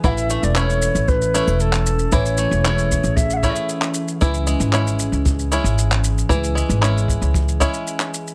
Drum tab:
SH |xxxxxxxxxxxxxxxx|xxxxxxxxxxxxxxxx|xxxxxxxxxxxxxxxx|xxxxxxxxxxxxxxxx|
CP |----x--------x--|----x--------x--|----x--------x--|----x--------x--|
BD |o-------o-------|o-----o-o-o-----|o-------o-------|o-----o-o-o-----|